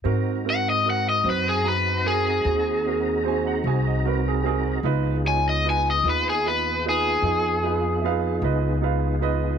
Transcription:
<<
  \new Staff \with { instrumentName = "Upright piano" } { \time 12/8 \key aes \mixolydian \tempo 4. = 50 r1 aes''16 ges''16 aes''16 ees''16 ces''16 aes'16 <g' aes'>8 | r1 <fes'' f''>8 ees''8 f''8 ees''8 | }
  \new Staff \with { instrumentName = "Overdriven electric guitar" } { \time 12/8 \key aes \mixolydian r8 ges''16 ees''16 ges''16 ees''16 ces''16 aes'16 ces''8 aes'2 r4. | r8 aes''16 ees''16 aes''16 ees''16 ces''16 aes'16 ces''8 aes'2 r4. | }
  \new Staff \with { instrumentName = "Grand piano" } { \time 12/8 \key aes \mixolydian <c' ges' bes'>8 <c' ges' bes'>8 <c' ges' bes'>8 <c' ges' c''>8 <c' ges' bes''>8 <c' ges' bes'>8 <c' ges' aes'>8 <c' ges' bes'>8 <c' ges' c''>8 <c' ges' aes'>8 <c' ges' bes'>8 <c' ges' bes'>8 | <ees' f' ces''>8 <ees' f' des''>8 <ees' f' ces''>8 <ees' f' ces''>8 <ees' f' ces''>8 <ees' f' ces''>8 <ees' f' aes'>8 <ees' f' ces''>8 <ees' f' ces''>8 <ees' f' ces''>8 <ees' f' ces''>8 <ees' f' ces''>8 | }
  \new Staff \with { instrumentName = "Tonewheel organ" } { \time 12/8 \key aes \mixolydian <c' ees' ges' bes''>1. | <ces' f' aes'>1. | }
  \new Staff \with { instrumentName = "Upright bass" } { \clef bass \time 12/8 \key aes \mixolydian aes,4. ges,4. ees,4. c,4. | des,4. ees,4. f,4. des,4. | }
>>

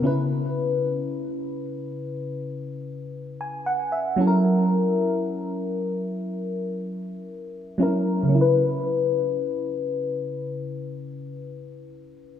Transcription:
\new Staff \with { instrumentName = "FM electric piano" } { \time 4/4 \key cis \dorian \tempo 4 = 58 << { r2. r16 gis''16 fis''16 e''16~ | e''16 r2. r8. | r1 | } \\ { <cis cis' e' b'>4. r2 r8 | <fis cis' e' a' ais'>4. r2 <fis cis' e' ais'>8 | <cis cis' e' b'>1 | } >> }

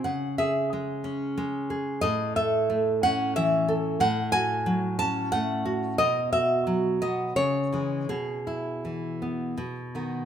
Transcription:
\new Staff \with { instrumentName = "Nylon-string guitar" } { \time 3/4 \key cis \minor \tempo 4 = 90 << { fis''8 e''4 r4. | \key e \major dis''8 e''4 fis''8 e''4 | fis''8 gis''4 a''8 fis''4 | dis''8 e''4 dis''8 cis''4 |
gis'2~ gis'8 r8 | } \\ { cis8 gis'8 gis8 cis'8 gis8 gis'8 | a,8 a'8 a8 cis'8 e8 a'8 | a,8 fis'8 fis8 cis'8 a8 fis'8 | b,8 fis'8 fis8 b8 cis8 <e gis>8 |
b,8 e'8 e8 b8 b,8 <dis b>8 | } >> }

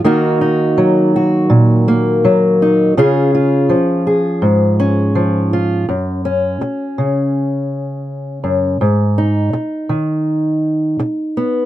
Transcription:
\new Staff \with { instrumentName = "Steel-string acoustic guitar" } { \time 4/4 \key fis \major \tempo 4 = 82 << { <ais dis' fis'>8 dis'4 fis'4 ais4 dis'8 | <cis' eis' gis'>8 eis'4 gis'4 cis'4 eis'8 | r8 cis'2.~ cis'8 | r8 dis'2. b8 | } \\ { dis4 fis4 ais,4 fis4 | cis4 eis4 gis,4 eis4 | fis,4 r8 cis2 fis,8 | gis,4 r8 dis4. r4 | } >> }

